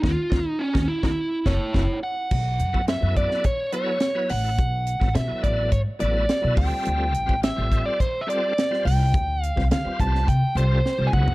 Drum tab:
CC |----------------|x---------------|----------------|----------------|
HH |----------------|--x-x-x-x-x-x-o-|x-x-x-x-x-x-x-o-|x-x-x-x-x-x-x-o-|
SD |o-o--o-o--o-o---|----o--o----o---|---oo-------o---|----o-------oo--|
FT |----------------|----------------|----------------|----------------|
BD |o-o--o-o--o-o---|o--o--o-o-------|o--o--o-o-----o-|---o--o-o-------|

CC |----------------|
HH |x-x-x-x-x-x-----|
SD |---oo--o----o---|
FT |---------------o|
BD |o--o--o-o-----o-|